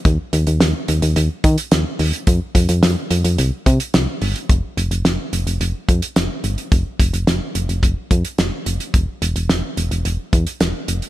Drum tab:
HH |x-xxx-xxx-xxx-ox|x-xxx-xxx-xxx-ox|x-xxx-xxx-xxx-xx|x-xxx-xxx-xxx-xx|
SD |----o-------o---|----o-------o---|----o-------o---|----o-------o---|
BD |o---------o-----|o-o-------o-----|o---------o-----|o-o-----o-o-----|

HH |x-xxx-xxx-xxx-xx|
SD |----o-------o---|
BD |o---------o-----|